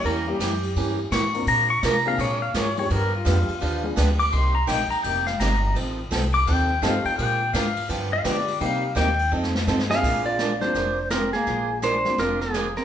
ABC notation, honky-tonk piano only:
X:1
M:4/4
L:1/8
Q:"Swing" 1/4=168
K:Bbmix
V:1 name="Honky-tonk piano"
z [G,B,^C=EG] z4 z [B,=CDFB] | z3 [B,CDFA] z3 [A,_CDFG] | z2 [A,=B,DFG] z2 [A,B,DFA] z2 | z8 |
z6 [=A,CEFG]2 | z6 [A,=B,DFG]2 | [G,B,CEG] z6 [A,B,CDA]- | [A,B,CDA]2 z [A,B,CDF] z4 |
z3 [A,B,CDF] z4 |]